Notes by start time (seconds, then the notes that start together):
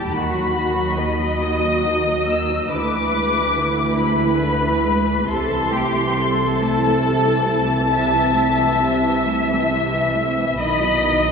Already playing: G4 A5
0.11 D#2 D#3 F#4 B5
0.32 F#3
0.53 D#3 F#4
0.74 F#3
0.94 D#3 D#5
1.18 F#3
1.40 D#3 D#6
1.61 F#3
1.83 D#3
2.04 F#3
2.27 D#3 E6
2.50 F#3
2.70 D2 D3 E4 B4 D6
2.93 E3
3.15 G#3
3.36 E3
3.58 D3
3.79 E3
3.98 G#3 B4 B5
4.23 E3
4.43 D3
4.64 E3
4.85 G#3
5.06 E3
5.28 C2 C3 E4 A4 C6
5.51 E3
5.73 A3 G4
5.95 E3
6.18 C3 A4
6.40 E3
6.62 A3 A5
6.83 E3
7.04 C3
7.26 E3
7.49 A3
7.70 E3
7.93 C3 E5
8.15 E3
8.36 A3
8.60 E3
8.82 C3
9.05 E3
9.27 A3
9.48 E3
9.71 C3
9.92 E3
10.15 A3
10.37 E3
10.57 B1 B2 D#3 D#5 B5
10.81 F#3
11.04 D#3
11.25 F#3